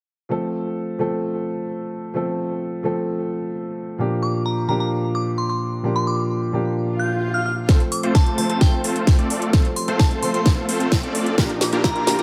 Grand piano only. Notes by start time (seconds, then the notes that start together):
0.29 F3 A3 C4 A4
0.98 F3 A3 C4 A4
2.14 F3 A3 C4 A4
2.83 F3 A3 C4 A4
3.98 A#2 F3 A#3 D4 G4
4.68 A#2 F3 A#3 D4 G4
5.83 A#2 F3 A#3 D4 G4
6.52 A#2 F3 A#3 D4 G4
7.67 F3 A3 C4 A4
8.37 F3 A3 C4 A4
9.52 F3 A3 C4 A4
10.21 F3 A3 C4 A4
11.37 A#2 F3 A#3 D4 G4
12.06 A#2 F3 A#3 D4 G4